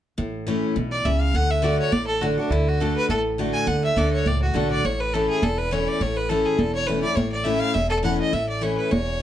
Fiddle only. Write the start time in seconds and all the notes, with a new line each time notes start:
0.91 D5
1.06 E5
1.20 F5
1.35 F#5
1.50 E5
1.64 D5
1.79 C#5
1.92 D5
2.07 A4
2.21 F#4
2.38 D4
2.51 E4
2.68 F#4
2.81 A4
2.96 B4
3.10 A4
3.53 G#5
3.67 F#5
3.84 E5
3.97 D5
4.13 C#5
4.27 D5
4.42 F#4
4.56 A4
4.71 D5
4.85 C#5
5.00 B4
5.14 A4
5.29 G#4
5.43 A4
5.58 B4
5.72 C#5
5.88 D5
6.02 C#5
6.17 B4
6.29 A4
6.46 G#4
6.59 A4
6.75 C#5
6.87 B4
7.02 D5
7.15 C#5
7.32 D5
7.44 E5
7.59 F5
7.74 E5
7.89 A4
8.04 F#5
8.20 D#5
8.33 E5
8.49 D5
8.62 C#5
8.77 B4
8.91 C#5